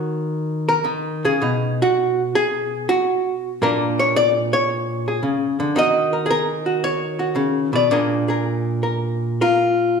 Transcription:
Already playing: D#3 F#4 C#5
0.69 A#4
0.85 D#3
1.25 C#3 G#4
1.42 B2 D#4
1.82 F#4
2.35 G#4
2.89 F#4
3.62 A#2 A#3 D4 A#4
3.99 C#5
4.16 D5
4.53 C#5
5.08 G#4
5.23 C#3
5.60 D3
5.76 D#3 F#4 A#4 D#5
6.13 A#4
6.26 G#4
6.30 A#4
6.66 F#4
6.84 C#5
7.19 F#4
7.36 C#3
7.73 B2 D5
7.91 A#2 D4 G#4 A#4
8.28 G#4 A#4
8.83 A#4
9.41 F4 A#4

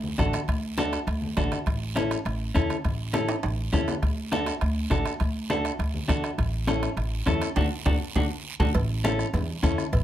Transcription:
Already playing: D2
0.04 high conga
0.18 A1 D4 F#4 A4, bombo low, bombo rim, high conga, high timbale, short guiro
0.33 bombo rim, high conga, high timbale, short guiro
0.48 D2, bombo low, bombo rim, high conga, high timbale, long guiro
0.78 D4 F#4 A4, bombo rim, high conga, high timbale, short guiro
0.93 bombo rim, high timbale, short guiro
1.07 D2, bombo rim, high conga, high timbale, long guiro
1.22 high conga
1.37 A1 D4 F#4 A4, bombo low, bombo rim, high conga, high timbale, low timbale, short guiro
1.52 bombo rim, high conga, high timbale, short guiro
1.66 A1, bombo low, bombo rim, high conga, high timbale, long guiro
1.96 C#4 E4 A4, bombo rim, high conga, high timbale, short guiro
2.11 bombo rim, high timbale, short guiro
2.25 A1, bombo rim, high conga, high timbale, long guiro
2.55 E2 C#4 E4 A4, bombo low, bombo rim, high conga, high timbale, short guiro
2.70 bombo rim, high conga, high timbale, short guiro
2.84 A1, bombo low, bombo rim, high conga, high timbale, long guiro
3.13 C#4 E4 A4, bombo rim, high conga, high timbale, short guiro
3.28 bombo rim, high timbale, short guiro
3.43 A1, bombo rim, high conga, high timbale, long guiro
3.73 E2 C#4 E4 A4, bombo low, bombo rim, high conga, low timbale, short guiro
3.88 bombo rim, high conga, low timbale, short guiro
4.02 D2, bombo low, bombo rim, high conga, high timbale, long guiro
4.32 D4 F#4 A4, bombo rim, high conga, high timbale, short guiro
4.46 bombo rim, high timbale, short guiro
4.61 D2, bombo rim, high conga, high timbale, long guiro
4.90 A1 D4 F#4 A4, bombo low, bombo rim, high conga, high timbale, low timbale, short guiro
5.06 bombo rim, high timbale, short guiro
5.20 D2, bombo low, bombo rim, high conga, high timbale, long guiro
5.50 D4 F#4 A4, bombo rim, high conga, high timbale, short guiro
5.65 bombo rim, high timbale, short guiro
5.79 D2, bombo rim, high conga, high timbale, long guiro
5.94 high conga
6.08 E2 D4 F#4 A4, bombo low, bombo rim, high conga, high timbale, short guiro
6.24 bombo rim, high timbale, short guiro
6.38 A1, bombo low, bombo rim, high conga, high timbale, long guiro
6.67 C#4 E4 A4, bombo rim, high conga, high timbale, short guiro
6.83 bombo rim, high timbale, short guiro
6.97 A1, bombo rim, high conga, high timbale, long guiro
7.26 E2 C#4 E4 A4, bombo low, bombo rim, high conga, high timbale, low timbale, short guiro
7.42 bombo rim, high timbale, short guiro
7.56 D2 D4 F#4 A4, bombo low, high conga, high timbale, long guiro
7.86 D2 D4 F#4 A4, bombo low, high conga, high timbale, long guiro
8.16 D2 D4 F#4 A4, bombo low, high conga, high timbale, long guiro
8.60 D2 D4 F#4 A4, bombo low, high conga, high timbale, long guiro
8.75 A1, bombo low, bombo rim, cowbell, high conga, long guiro
9.04 C#4 E4 A4, bombo rim, cowbell, high conga, short guiro
9.19 bombo rim, short guiro
9.33 E2, bombo rim, cowbell, high conga, low conga, long guiro
9.63 E2 C#4 E4 A4, bombo low, bombo rim, cowbell, high conga, short guiro
9.78 bombo rim, high conga, short guiro
9.93 A1, bombo low, bombo rim, cowbell, high conga, low conga, long guiro

